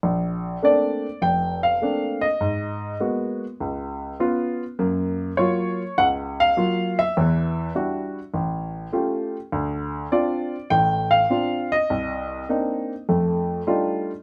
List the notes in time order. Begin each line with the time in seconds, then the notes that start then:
0.03 A#1
0.62 A3 A#3 C4 D4 D5
1.22 F1 G5
1.63 F5
1.82 A3 A#3 C4 D4
2.21 D#5
2.41 G#2
3.00 G#3 A#3 B3 F#4
3.60 C#2
4.20 B3 C#4 F4
4.79 F#2 A#3
5.37 F#3 A#3 F4 C#5
5.98 C#2 F#5
6.40 F5
6.57 F#3 A#3 F4
6.99 E5
7.17 E2 E3
7.75 G3 D4 E4 F#4
8.34 A1
8.93 A3 C#4 F4 G4
9.52 D2
10.12 C4 D4 F4 D5
10.70 A1 A2 G5
11.11 F5
11.30 C4 D4 F4
11.72 D#5
11.90 C2
12.49 A#3 C4 D4 D#4
13.09 F2 A3
13.67 G3 A3 D4 D#4 F4